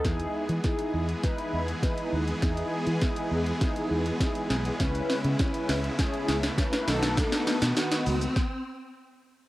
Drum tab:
HH |xx-xxx-xxx-xxx-x|xx-xxx-xxx-xxx-x|xxoxxxoxxxoxxxox|xxoxxxox--------|
SH |----------------|----------------|----------------|xxxxxxxx--------|
SD |o---o---o---o---|o---o---o---o-o-|o-o-o-o-o-oooooo|oooooo--o-------|
BD |o---o---o---o---|o---o---o---o---|o---o---o---o---|o-------o-------|